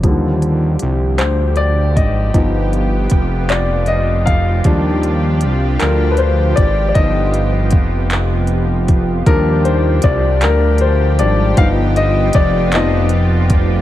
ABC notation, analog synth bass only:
X:1
M:6/8
L:1/8
Q:3/8=52
K:Eb
V:1 name="Analog synth bass" clef=bass
E,,2 C,, D,,2 A,,, | G,,,2 F,,,4 | E,,2 C,, D,,2 A,,, | G,,,2 F,,,4 |
E,,2 C,, D,,2 A,,, | G,,,2 F,,,4 |]